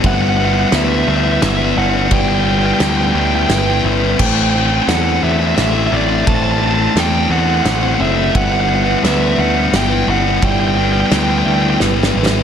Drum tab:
CC |---------|---------|x--------|---------|
RD |x--x--x--|x--x--x--|---x--x--|x--x--x--|
SD |---o--o--|---o--o--|---o--o--|---o--o--|
BD |o--------|o--------|o--------|o--------|

CC |---------|---------|
RD |x--x--x--|x--x-----|
SD |---o--o--|---o--ooo|
BD |o--------|o--------|